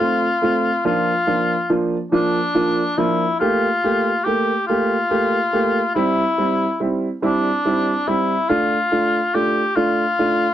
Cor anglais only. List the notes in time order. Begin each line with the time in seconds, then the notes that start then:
Already playing: F4
0.86 F4
2.12 D4
2.98 E4
3.39 F4
4.24 G4
4.67 F4
5.95 E4
7.23 D4
8.07 E4
8.49 F4
9.34 G4
9.76 F4